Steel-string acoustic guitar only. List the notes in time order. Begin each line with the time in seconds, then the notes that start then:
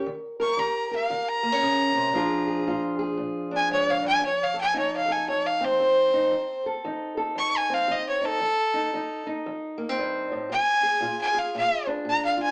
Already playing: A#4
0.06 D#3
0.40 A#4
0.57 D#3 G4
0.91 A#4
1.10 D#3
1.43 A#3
1.52 C#4
1.62 C#3
1.94 C3
2.13 A#2 F3 D4 F4 G#4
2.47 G#4
2.67 A#2 F4
2.99 G#4
3.17 A#2
3.51 D4
3.70 G#2
4.02 G2
4.22 F2
4.54 A4
4.74 F2 D#4
5.08 A4
5.28 F2
5.61 C4
5.80 F2
6.14 D#4
6.31 F2
6.66 A4
6.84 F2 D#4
7.17 A4
7.35 F2
7.70 C4
7.88 F2
8.21 D#4
8.40 F2
8.74 D#4
8.94 F2 D#4
9.27 D#4
9.46 F2
9.78 A#3
9.89 C4
9.98 G2
10.32 A2
10.50 A#2
10.83 G#4
11.01 A#2 F4
11.34 G#4
11.55 A#2
11.87 D4
12.05 A#2
12.37 F4